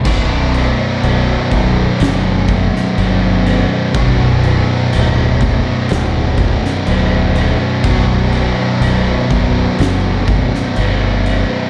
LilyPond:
<<
  \new Staff \with { instrumentName = "Distorted electric guitar" } { \clef bass \time 4/4 \key b \minor \tempo 4 = 62 <b,, fis, b, fis d'>1 | <b,, fis, b, fis d'>1 | <b,, fis, b, fis d'>1 | }
  \new Staff \with { instrumentName = "Distorted electric guitar" } { \clef bass \time 4/4 \key b \minor <b,, fis, b,>1 | <b,, fis, b,>1 | <b,, fis, b,>1 | }
  \new Staff \with { instrumentName = "Distorted electric guitar" } { \clef bass \time 4/4 \key b \minor <b,, fis, b,>4. <b,, fis, b,>4. <b,, fis, b,>4 | <b,, fis, b,>4. <b,, fis, b,>4. <b,, fis, b,>4 | <b,, fis, b,>4. <b,, fis, b,>4. <b,, fis, b,>4 | }
  \new Staff \with { instrumentName = "Fingered electric bass" } { \clef bass \time 4/4 \key b \minor b,,,4 b,,,8 b,,,8 fis,,4 g,,4 | b,,,4 d,,4 d,,4 d,,4 | b,,,4 b,,,8 b,,,8 fis,,4 g,,4 | }
  \new DrumStaff \with { instrumentName = "Drums" } \drummode { \time 4/4 <cymc bd>8 cymc8 cymc8 <cymc bd>8 <cymc sn>8 <cymc bd>16 sn16 cymc8 cymc8 | <cymc bd>8 cymc8 cymc8 <cymc bd>8 <cymc sn>8 <cymc bd>16 sn16 cymc8 cymc8 | <cymc bd>8 cymc8 cymc8 <cymc bd>8 <cymc sn>8 <cymc bd>16 sn16 cymc8 cymc8 | }
>>